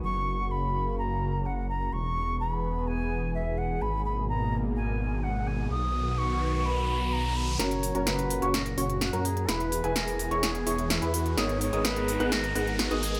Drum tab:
HH |----------------|----------------|----------------|----------------|
SD |----------------|----------------|----------------|----------------|

HH |xxoxxxoxxxoxxxox|xxoxxooxxxoxxxox|xxoxxxoxxxoxxxox|
SD |o---o---o---o---|o---o---o---o---|o---o---o---o---|